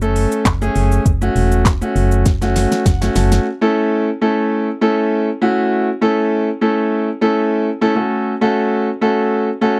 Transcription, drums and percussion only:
0.02 shaker
0.16 open hi-hat, shaker
0.32 shaker
0.45 kick, snare, clap, closed hi-hat, shaker
0.62 shaker
0.76 open hi-hat, shaker
0.92 shaker
1.06 kick, closed hi-hat, shaker
1.22 shaker
1.36 open hi-hat, shaker
1.52 shaker
1.65 kick, snare, clap, closed hi-hat, shaker
1.82 shaker
1.96 open hi-hat, shaker
2.12 shaker
2.26 kick, snare, closed hi-hat, shaker
2.42 snare, shaker
2.56 snare, open hi-hat, shaker
2.72 snare, shaker
2.86 kick, snare, closed hi-hat, shaker
3.02 snare, shaker
3.15 snare, open hi-hat, shaker
3.32 snare, shaker

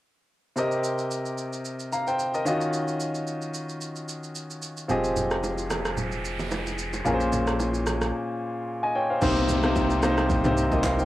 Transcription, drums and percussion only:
0.57 shaker
0.72 shaker
0.84 shaker
0.98 shaker
1.11 shaker
1.25 shaker
1.38 shaker
1.53 shaker
1.65 shaker
1.79 shaker
1.92 shaker
2.07 shaker
2.19 shaker
2.34 shaker
2.46 shaker
2.61 shaker
2.73 shaker
2.88 shaker
3.00 shaker
3.15 shaker
3.27 shaker
3.42 shaker
3.54 shaker
3.69 shaker
3.81 shaker
3.96 shaker
4.09 shaker
4.23 shaker
4.35 shaker
4.50 shaker
4.62 shaker
4.77 shaker
4.89 low conga, shaker
5.04 shaker
5.16 low conga, shaker
5.31 cross-stick, shaker
5.44 high bongo, shaker
5.58 shaker
5.70 cross-stick, low bongo, shaker
5.85 cross-stick, shaker
5.97 low conga, shaker
6.12 shaker
6.25 shaker
6.39 low bongo, shaker
6.52 high bongo, shaker
6.67 shaker
6.79 shaker
6.93 high bongo, shaker
7.06 low conga, shaker
7.20 shaker
7.33 low bongo, low conga, shaker
7.47 cross-stick, shaker
7.60 high bongo, shaker
7.74 shaker
7.87 cross-stick, low bongo, shaker
8.02 cross-stick, shaker
9.22 kick, crash, low conga, shaker
9.37 shaker
9.49 low bongo, low conga, shaker
9.63 cross-stick, shaker
9.76 kick, high bongo, shaker
9.90 shaker
10.03 cross-stick, low bongo, shaker
10.18 cross-stick, shaker
10.30 kick, low conga, shaker
10.44 mid tom, shaker
10.57 shaker
10.72 kick, low bongo, shaker
10.84 kick, clap, high bongo, shaker
10.99 shaker

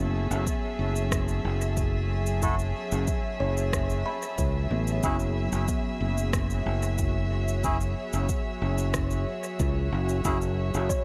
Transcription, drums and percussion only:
0.31 shaker
0.47 kick, shaker
0.96 shaker
1.12 kick, cross-stick, shaker
1.28 shaker
1.61 shaker
1.77 kick, shaker
2.26 shaker
2.42 kick, shaker
2.59 shaker
2.92 shaker
3.07 kick, shaker
3.57 shaker
3.73 kick, cross-stick, shaker
3.90 shaker
4.22 shaker
4.38 kick, shaker
4.87 shaker
5.03 kick, shaker
5.20 shaker
5.52 shaker
5.68 kick, shaker
6.18 shaker
6.33 kick, cross-stick, shaker
6.50 shaker
6.82 shaker
6.98 kick, shaker
7.48 shaker
7.64 kick, shaker
7.81 shaker
8.13 shaker
8.29 kick, shaker
8.78 shaker
8.94 kick, cross-stick, shaker
9.11 shaker
9.44 shaker
9.59 kick, shaker
10.09 shaker
10.25 kick, shaker
10.41 shaker
10.74 shaker
10.90 kick, shaker

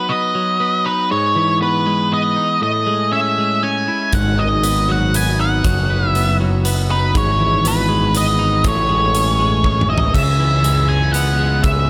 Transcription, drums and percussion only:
4.13 kick, closed hi-hat
4.63 closed hi-hat
5.14 closed hi-hat
5.64 kick, closed hi-hat
6.15 closed hi-hat
6.65 closed hi-hat
7.15 kick, closed hi-hat
7.65 closed hi-hat
8.15 closed hi-hat
8.64 kick, closed hi-hat
9.15 closed hi-hat
9.64 kick
9.81 mid tom
9.98 floor tom
10.14 kick, crash
10.64 closed hi-hat
11.14 closed hi-hat
11.64 kick, closed hi-hat

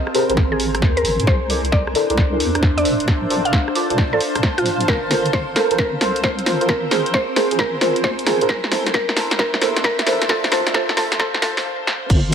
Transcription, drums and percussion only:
0.07 cross-stick
0.15 open hi-hat
0.30 closed hi-hat
0.37 kick, snare
0.60 open hi-hat
0.75 cross-stick, closed hi-hat
0.82 kick, snare
0.97 closed hi-hat
1.05 open hi-hat
1.20 closed hi-hat
1.27 kick, snare
1.50 open hi-hat
1.65 closed hi-hat
1.72 kick, snare
1.87 cross-stick
1.95 open hi-hat
2.10 closed hi-hat
2.18 kick, snare
2.40 open hi-hat
2.55 cross-stick, closed hi-hat
2.63 kick, snare
2.78 closed hi-hat
2.85 open hi-hat
3.00 closed hi-hat
3.08 kick, snare
3.30 open hi-hat
3.45 closed hi-hat
3.53 kick, snare
3.68 cross-stick
3.75 open hi-hat
3.90 closed hi-hat
3.98 kick, snare
4.21 open hi-hat
4.35 cross-stick, closed hi-hat
4.43 kick, snare
4.58 closed hi-hat
4.66 open hi-hat
4.80 closed hi-hat
4.88 kick, snare
5.11 snare, open hi-hat
5.26 closed hi-hat
5.33 kick, snare
5.56 snare, open hi-hat
5.71 closed hi-hat
5.78 kick, snare
6.01 snare, open hi-hat
6.16 closed hi-hat
6.24 kick, snare
6.39 closed hi-hat
6.46 snare, open hi-hat
6.61 closed hi-hat
6.69 kick, snare
6.91 snare, open hi-hat
7.06 closed hi-hat
7.14 kick, snare
7.36 snare, open hi-hat
7.51 closed hi-hat
7.59 kick, snare
7.81 snare, open hi-hat
7.96 closed hi-hat
8.04 kick, snare
8.19 closed hi-hat
8.27 snare, open hi-hat
8.41 closed hi-hat
8.49 kick, snare
8.64 snare
8.72 snare, open hi-hat
8.86 snare, closed hi-hat
8.94 kick, snare
9.09 snare
9.17 snare, open hi-hat
9.31 snare, closed hi-hat
9.39 kick, snare
9.54 snare
9.62 snare, open hi-hat
9.77 snare, closed hi-hat
9.84 kick, snare
9.99 snare, closed hi-hat
10.07 snare, open hi-hat
10.22 snare, closed hi-hat
10.29 kick, snare
10.44 snare, closed hi-hat
10.52 snare, open hi-hat
10.67 snare, closed hi-hat
10.74 kick, snare
10.89 snare
10.97 snare, open hi-hat
11.12 snare, closed hi-hat
11.20 kick, snare
11.34 snare
11.42 snare, open hi-hat
11.57 snare, open hi-hat
11.87 snare
12.10 kick, crash, shaker

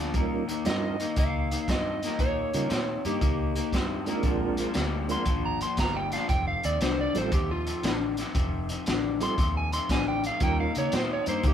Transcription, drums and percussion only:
0.14 kick, closed hi-hat
0.49 closed hi-hat
0.65 snare, closed hi-hat
1.00 closed hi-hat
1.16 kick, closed hi-hat
1.51 closed hi-hat
1.68 kick, snare, closed hi-hat
2.03 snare, closed hi-hat
2.19 kick, closed hi-hat
2.54 closed hi-hat
2.70 snare, closed hi-hat
3.05 closed hi-hat
3.21 kick, closed hi-hat
3.56 closed hi-hat
3.73 kick, snare, closed hi-hat
4.06 closed hi-hat
4.23 kick, closed hi-hat
4.57 closed hi-hat
4.74 snare, closed hi-hat
5.09 closed hi-hat
5.25 kick, closed hi-hat
5.61 closed hi-hat
5.77 kick, snare, closed hi-hat
6.12 snare, closed hi-hat
6.29 kick, closed hi-hat
6.63 closed hi-hat
6.81 snare, closed hi-hat
7.15 closed hi-hat
7.32 kick, closed hi-hat
7.67 closed hi-hat
7.83 snare, closed hi-hat
8.17 snare, closed hi-hat
8.35 kick, closed hi-hat
8.69 closed hi-hat
8.86 snare, closed hi-hat
9.21 closed hi-hat
9.38 kick, closed hi-hat
9.73 closed hi-hat
9.89 kick, snare, closed hi-hat
10.24 closed hi-hat
10.40 kick, closed hi-hat
10.75 closed hi-hat
10.92 snare, closed hi-hat
11.26 closed hi-hat
11.43 kick, closed hi-hat

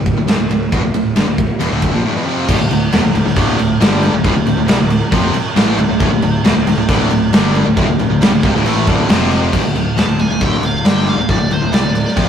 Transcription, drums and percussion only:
0.06 kick, ride
0.28 snare, ride
0.51 ride
0.72 kick, ride
0.94 ride
1.16 snare, ride
1.38 kick, ride
1.60 ride
1.82 kick, ride
2.49 kick, crash
2.71 crash
2.92 snare, crash
3.05 snare
3.15 crash
3.27 snare
3.36 kick, crash
3.59 crash
3.81 snare, crash
4.03 crash
4.24 kick, crash
4.47 crash
4.68 snare, crash
4.90 crash
5.12 kick, crash
5.34 crash
5.56 snare, crash
5.78 crash
6.00 kick, crash
6.22 crash
6.44 snare, crash
6.57 snare
6.67 crash
6.89 kick, crash
7.11 crash
7.33 snare, crash
7.55 crash
7.77 kick, crash
7.99 crash
8.22 snare, crash
8.43 kick, crash
8.56 snare
8.66 crash
8.87 kick, crash
9.09 snare, crash
9.31 crash
9.53 kick, crash
9.75 crash
9.98 snare, crash
10.19 crash
10.41 kick, crash
10.63 crash
10.85 snare, crash
11.07 crash
11.29 kick, crash
11.51 crash
11.73 snare, crash
11.95 crash
12.08 snare
12.17 kick, crash

